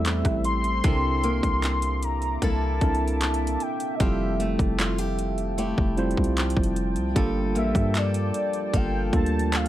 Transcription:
Already playing: 808-style bass E2, steel-string acoustic guitar A2 G3 C4 E4, tine electric piano G3 A3 C4 E4 A4, ambient pad G4 C5 E6, soft synth lead E5
0.06 clap, closed hi-hat
0.25 808-style bass A1, kick, cross-stick, closed hi-hat
0.44 soft synth lead C6, closed hi-hat
0.64 closed hi-hat
0.84 808-style bass C2, steel-string acoustic guitar C3 A4, ambient pad A#3 E5 D6, tine electric piano C4 D4 E4 A4 A#4, kick, closed hi-hat
1.24 steel-string acoustic guitar A#3, closed hi-hat
1.43 808-style bass C2, kick, closed hi-hat
1.63 clap, closed hi-hat
1.82 closed hi-hat
2.02 soft synth lead A#5, closed hi-hat
2.22 closed hi-hat
2.42 808-style bass C2, steel-string acoustic guitar A#3 E4 A4, soft synth lead A5, kick, closed hi-hat
2.81 808-style bass C2, tine electric piano C4 D4 E4 A4 A#4, kick, closed hi-hat
2.95 closed hi-hat
3.08 closed hi-hat
3.21 clap, closed hi-hat
3.34 closed hi-hat
3.47 closed hi-hat
3.60 soft synth lead G5, closed hi-hat
3.80 closed hi-hat
3.95 soft synth lead D#5
4.00 808-style bass F1, ambient pad F3 G5 A5, steel-string acoustic guitar F3 G4, tine electric piano G3 C4 E4 F4 A4, soft synth lead E5, kick, closed hi-hat
4.40 steel-string acoustic guitar A3, closed hi-hat
4.59 808-style bass F1, kick, closed hi-hat
4.79 steel-string acoustic guitar F4, clap, closed hi-hat
4.98 steel-string acoustic guitar G4, closed hi-hat
5.19 closed hi-hat
5.38 closed hi-hat
5.58 steel-string acoustic guitar A3 E4 G4, closed hi-hat
5.78 808-style bass F1, kick
5.97 tine electric piano G3 C4 E4 F4 C5, closed hi-hat
6.11 closed hi-hat
6.17 808-style bass C2, kick
6.24 closed hi-hat
6.37 clap, closed hi-hat
6.50 closed hi-hat
6.57 808-style bass F1, kick
6.63 closed hi-hat
6.76 closed hi-hat
6.96 808-style bass C2, closed hi-hat
7.15 808-style bass G1, tine electric piano G3 A#3 D4 F4 A4, steel-string acoustic guitar G3 A4, ambient pad A#3, kick, closed hi-hat
7.55 808-style bass A1, steel-string acoustic guitar A#3, soft synth lead E5, closed hi-hat
7.75 808-style bass G2, kick, closed hi-hat
7.95 steel-string acoustic guitar A4, soft synth lead D5, clap, closed hi-hat
8.14 closed hi-hat
8.34 closed hi-hat
8.53 closed hi-hat
8.74 808-style bass G1, steel-string acoustic guitar A#3 F4 A4, soft synth lead G5, kick, closed hi-hat
9.12 808-style bass D2, tine electric piano G3 A#3 D4 F4 A4, soft synth lead A5, kick, closed hi-hat
9.26 closed hi-hat
9.39 closed hi-hat
9.52 soft synth lead F5, clap, closed hi-hat

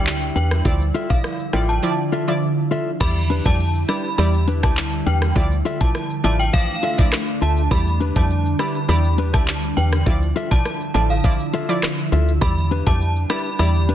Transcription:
Already playing: fm bass D2, ambient pad D3 G3 E4, synth pluck G3 E4 D5
0.07 clap, shaker
0.22 shaker
0.36 fm bass E2, clean electric guitar D4 G4 B4, synth bell G5, closed hi-hat, shaker
0.51 cross-stick, shaker
0.65 fm bass D2, ambient pad D3 F3, synth pluck F3 E4 D5, kick, shaker
0.81 shaker
0.94 clean electric guitar F4 A4 E5, closed hi-hat, shaker
1.10 fm bass B1, synth pluck F3 E4 D5, synth bell F5, kick, shaker
1.24 cross-stick, shaker
1.39 shaker
1.53 fm bass A1, synth pluck F3 E4 D5, clean electric guitar F4 A4 E5, synth bell G5, cross-stick, closed hi-hat, shaker
1.69 synth bell A5, shaker
1.83 synth pluck F3 E4 D5
2.12 clean electric guitar F4 A4 E5
2.28 synth pluck F3 E4 D5
2.71 clean electric guitar F4 A4 E5
3.00 fm bass E2, ambient pad D3 G3 E4, synth pluck G3 E4 D5, synth bell B5, kick, crash, shaker
3.16 shaker
3.30 clean electric guitar D4 G4 B4, closed hi-hat, shaker
3.45 fm bass F2, synth pluck G3 E4 D5, synth bell A5, kick, shaker
3.60 shaker
3.75 shaker
3.88 synth pluck G3 E4 D5, clean electric guitar D4 G4 B4, synth bell B5, cross-stick, closed hi-hat, shaker
4.04 shaker
4.18 fm bass E2, synth pluck G3 E4 D5, synth bell B5, shaker
4.34 shaker
4.48 clean electric guitar D4 G4 B4, closed hi-hat, shaker
4.63 fm bass D2, synth pluck G3 E4 D5, synth bell A5, kick, cross-stick, shaker
4.77 clap, shaker
4.92 shaker
5.06 fm bass E2, clean electric guitar D4 G4 B4, synth bell G5, closed hi-hat, shaker
5.22 cross-stick, shaker
5.36 fm bass D2, synth pluck F3 E4 D5, ambient pad A3 D4, kick, shaker
5.52 shaker
5.65 clean electric guitar F4 A4 E5, closed hi-hat, shaker
5.81 fm bass B1, synth pluck F3 E4 D5, synth bell A5, kick, shaker
5.95 cross-stick, shaker
6.10 shaker
6.24 fm bass A1, synth pluck F3 E4 D5, clean electric guitar F4 A4 E5, synth bell A5, closed hi-hat, shaker
6.39 synth bell G5, shaker
6.53 synth pluck E3 F3 D5, synth bell F5, kick, shaker
6.69 shaker
6.83 clean electric guitar F4 A4 E5, closed hi-hat, shaker
6.98 synth pluck F3 E4 D5, kick, shaker
7.12 cross-stick, clap, shaker
7.28 shaker
7.42 fm bass D2, clean electric guitar F4 A4 E5, synth bell A5, closed hi-hat, shaker
7.57 shaker
7.71 fm bass E2, synth pluck G3 E4 D5, ambient pad G3, synth bell B5, kick, shaker
7.87 shaker
8.00 clean electric guitar D4 G4 B4, closed hi-hat, shaker
8.16 fm bass F2, synth pluck G3 E4 D5, synth bell A5, kick, shaker
8.30 shaker
8.45 shaker
8.59 synth pluck G3 E4 D5, clean electric guitar D4 G4 B4, synth bell B5, cross-stick, closed hi-hat, shaker
8.75 shaker
8.89 fm bass E2, synth pluck G3 E4 D5, synth bell B5, shaker
9.04 shaker
9.18 clean electric guitar D4 G4 B4, closed hi-hat, shaker
9.33 fm bass D2, synth pluck G3 E4 D5, synth bell A5, kick, cross-stick, shaker
9.48 clap, shaker
9.63 shaker
9.77 fm bass E2, clean electric guitar D4 G4 B4, synth bell G5, closed hi-hat, shaker
9.93 cross-stick, shaker
10.06 fm bass D2, synth pluck F3 E4 D5, ambient pad F3 E4, kick, shaker
10.22 shaker
10.36 clean electric guitar F4 A4 E5, closed hi-hat, shaker
10.51 fm bass B1, synth pluck F3 E4 D5, synth bell A5, kick, shaker
10.65 cross-stick, shaker
10.81 shaker
10.94 fm bass A1, synth pluck F3 E4 D5, clean electric guitar F4 A4 E5, synth bell A5, closed hi-hat, shaker
11.10 synth bell F5, shaker
11.24 synth pluck F3 E4 D5, kick, shaker
11.40 shaker
11.53 clean electric guitar F4 A4 E5, closed hi-hat, shaker
11.69 synth pluck F3 E4 D5, shaker
11.83 cross-stick, clap, shaker
11.98 shaker
12.12 fm bass D2, clean electric guitar F4 A4 E5, closed hi-hat, shaker
12.28 shaker
12.41 fm bass E2, synth pluck G3 E4 D5, ambient pad G3 D4, synth bell B5, kick, shaker
12.57 shaker
12.71 clean electric guitar D4 G4 B4, closed hi-hat, shaker
12.86 fm bass F2, synth pluck G3 E4 D5, synth bell A5, kick, shaker
13.01 shaker
13.16 shaker
13.30 synth pluck G3 E4 D5, clean electric guitar D4 G4 B4, synth bell B5, cross-stick, closed hi-hat, shaker
13.46 shaker
13.59 fm bass E2, synth pluck G3 E4 D5, synth bell B5, shaker
13.75 shaker
13.89 clean electric guitar D4 G4 B4, closed hi-hat, shaker

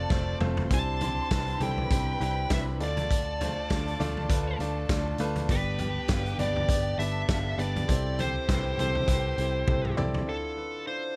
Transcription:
Already playing: grand piano A3 C4 F4 A4 B4 C5 D5, violin section A4 A5, lead electric guitar D5
0.10 picked electric bass F1, grand piano A3 C4 F4 A4 C5, kick, snare
0.40 picked electric bass F1, grand piano A3 C4 F4 A4 C5, mid tom
0.57 floor tom
0.70 picked electric bass C2, grand piano C3 C4 D4 E4 G4 C5, violin section C5 C6, lead electric guitar A5, kick, closed hi-hat
1.01 grand piano C4 D4 E4 G4 D5, closed hi-hat, floor tom
1.30 picked electric bass C2, grand piano C4 D4 E4 G4 B4, kick, snare, closed hi-hat
1.47 closed hi-hat
1.60 picked electric bass C2, grand piano C4 D4 E4 G4 A4, violin section B4 B5, lead electric guitar G5, closed hi-hat, floor tom
1.78 floor tom
1.90 picked electric bass C2, grand piano C4 D4 E4 G4 C5, kick, closed hi-hat
2.20 picked electric bass C2, grand piano C4 D4 E4 G4 B4, lead electric guitar G5, closed hi-hat
2.50 picked electric bass C2, grand piano C4 D4 E4 G4 B4, lead electric guitar E5, kick, snare, closed hi-hat
2.80 picked electric bass D2, grand piano D3 A3 D4 F4 A4 D5, violin section A4 A5, lead electric guitar D5, closed hi-hat
2.97 closed hi-hat, floor tom
3.11 kick, closed hi-hat
3.41 grand piano A3 D4 F4 A4 C5, closed hi-hat, floor tom
3.70 picked electric bass D2, grand piano A3 D4 F4 A4 D5, kick, snare, closed hi-hat
3.87 closed hi-hat
4.00 picked electric bass D2, grand piano A3 D4 F4 A4 D5, closed hi-hat, floor tom
4.17 floor tom
4.29 picked electric bass D2, grand piano A3 D4 F4 A4 B4, kick, closed hi-hat
4.59 picked electric bass D2, grand piano A3 D4 F4 A4 D5, closed hi-hat
4.89 picked electric bass D2, grand piano A3 D4 F4 A4 D5, kick, snare, closed hi-hat
5.18 picked electric bass D2, grand piano A3 D4 F4 A4 B4, closed hi-hat
5.35 closed hi-hat, floor tom
5.49 picked electric bass G1, grand piano G2 B3 D4 G4 B4 D5, violin section G4 G5, lead electric guitar B4, kick, closed hi-hat
5.78 grand piano B3 D4 G4 B4 D5, closed hi-hat, floor tom
6.08 picked electric bass G1, grand piano B3 D4 G4 B4 F5, kick, snare, closed hi-hat
6.26 closed hi-hat
6.38 picked electric bass G1, grand piano B3 D4 G4 B4 D5, lead electric guitar D5, closed hi-hat, floor tom
6.56 floor tom
6.69 picked electric bass G1, grand piano B3 D4 G4 B4 D5, kick, closed hi-hat
6.98 picked electric bass G1, grand piano B3 D4 G4 B4 D5, violin section A4 A5, lead electric guitar E5, closed hi-hat
7.29 picked electric bass G1, grand piano B3 D4 G4 B4 F5, kick, snare, closed hi-hat
7.58 picked electric bass G1, grand piano B3 D4 G4 B4 D5, lead electric guitar D5, closed hi-hat
7.76 closed hi-hat, floor tom
7.88 picked electric bass C2, grand piano C3 C4 E4 G4 A4 C5, violin section G4 G5, kick, closed hi-hat
8.18 grand piano C4 E4 G4 A4 C5, lead electric guitar C5, closed hi-hat, floor tom
8.48 picked electric bass C2, grand piano C4 E4 G4 A4 B4, kick, snare, closed hi-hat
8.78 picked electric bass C2, grand piano C4 E4 G4 A4 C5, lead electric guitar C5, closed hi-hat, floor tom
8.95 floor tom
9.08 picked electric bass C2, grand piano C4 E4 G4 A4 B4, kick, closed hi-hat
9.38 picked electric bass C2, grand piano C4 E4 G4 A4 C5, closed hi-hat
9.67 picked electric bass C2, grand piano C4 E4 G4 A4 C5, kick, high tom
9.85 mid tom
9.97 picked electric bass C2, grand piano C4 E4 G4 A4 D5, mid tom
10.14 floor tom
10.27 grand piano D3 D4 E4 F4 A4, lead electric guitar A4
10.57 grand piano D4 E4 F4 B4
10.87 grand piano D4 E4 F4 A4, lead electric guitar C5

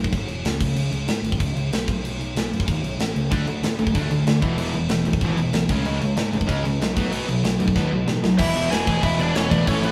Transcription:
0.00 picked electric bass B1
0.04 kick
0.13 picked electric bass G#1, kick, crash
0.28 picked electric bass E1, crash
0.45 picked electric bass C#2, snare, crash
0.61 picked electric bass C#2, kick, crash
0.76 picked electric bass C#2, crash
0.92 picked electric bass C#2, crash
1.07 picked electric bass G#2, snare, crash
1.23 picked electric bass G#1, crash
1.32 kick
1.40 picked electric bass C#2, kick, crash
1.55 picked electric bass C#2, crash
1.72 picked electric bass B1, snare, crash
1.88 picked electric bass B1, kick, crash
2.03 picked electric bass B1, crash
2.20 picked electric bass B1, crash
2.36 picked electric bass B1, snare, crash
2.53 picked electric bass F#2, crash
2.60 kick
2.68 picked electric bass D#2, kick, crash
2.84 picked electric bass B1, crash
2.99 picked electric bass A1, snare, crash
3.16 picked electric bass C#2, crash
3.31 picked electric bass D2, distorted electric guitar D3 A3 D4, kick, crash
3.47 picked electric bass D2, distorted electric guitar D3 A3, crash
3.63 picked electric bass A2, distorted electric guitar D3 A3, snare, crash
3.79 picked electric bass A1, distorted electric guitar D3 A3, crash
3.87 kick
3.95 picked electric bass D2, distorted electric guitar D3 A3 D4, kick, crash
4.10 picked electric bass D2, distorted electric guitar D3 A3, crash
4.26 picked electric bass D2, distorted electric guitar D3 A3, snare, crash
4.42 picked electric bass E1, distorted electric guitar E2 B2 E3, kick, crash
4.58 picked electric bass E1, distorted electric guitar E2 B2 E3, crash
4.73 picked electric bass E1, distorted electric guitar E2 B2, crash
4.89 picked electric bass E1, distorted electric guitar E2 B2, snare, crash
5.05 picked electric bass B1, distorted electric guitar E2 B2, crash
5.13 kick
5.21 picked electric bass G#1, distorted electric guitar E2 B2 E3, kick, crash
5.37 picked electric bass E1, distorted electric guitar E2 B2, crash
5.53 picked electric bass B1, distorted electric guitar E2 B2, snare, crash
5.69 picked electric bass C#2, distorted electric guitar C#3 G#3 C#4, kick, crash
5.85 picked electric bass C#2, distorted electric guitar C#3 G#3 C#4, crash
6.00 picked electric bass C#2, distorted electric guitar C#3 G#3, crash
6.16 picked electric bass G#2, distorted electric guitar C#3 G#3, snare, crash
6.33 picked electric bass G#1, distorted electric guitar C#3 G#3, crash
6.41 kick
6.47 picked electric bass C#2, distorted electric guitar C#3 G#3 C#4, kick, crash
6.64 picked electric bass C#2, distorted electric guitar C#3 G#3, crash
6.80 picked electric bass B1, distorted electric guitar C#3 G#3, snare, crash
6.96 picked electric bass B1, distorted electric guitar B2 F#3 B3, kick, crash
7.10 picked electric bass B1, distorted electric guitar B2 F#3 B3, crash
7.26 picked electric bass B1, distorted electric guitar B2 F#3, crash
7.44 picked electric bass B1, distorted electric guitar B2 F#3, snare, crash
7.59 picked electric bass F#2, distorted electric guitar B2 F#3, crash
7.68 kick
7.76 picked electric bass D#2, distorted electric guitar B2 F#3 B3, kick, snare
7.91 picked electric bass B1, distorted electric guitar B2 F#3
8.07 picked electric bass A1, distorted electric guitar B2 F#3, snare
8.23 picked electric bass B1, distorted electric guitar B2 F#3, snare
8.38 picked electric bass E1, distorted electric guitar E2 B2 E3, lead electric guitar E4 E5, kick, crash
8.55 picked electric bass E1, distorted electric guitar E2 B2 E3, crash
8.71 picked electric bass E1, distorted electric guitar E2 B2 E3, lead electric guitar G#4 G#5, snare, crash
8.87 picked electric bass E1, distorted electric guitar E2 B2 E3, kick, crash
9.03 picked electric bass E1, distorted electric guitar E2 B2 E3, lead electric guitar E4 E5, kick, crash
9.19 picked electric bass E1, distorted electric guitar E2 B2 E3, lead electric guitar D4 D5, crash
9.34 picked electric bass E1, distorted electric guitar E2 B2 E3, lead electric guitar C#4 C#5, snare, crash
9.50 picked electric bass A1, distorted electric guitar E2 B2 E3, lead electric guitar D4 D5, kick, crash
9.67 picked electric bass A1, distorted electric guitar A2 E3 A3, lead electric guitar C#5, kick, crash
9.71 lead electric guitar C#4
9.81 picked electric bass A1, distorted electric guitar A2 E3 A3, lead electric guitar B4, crash
9.86 lead electric guitar B3

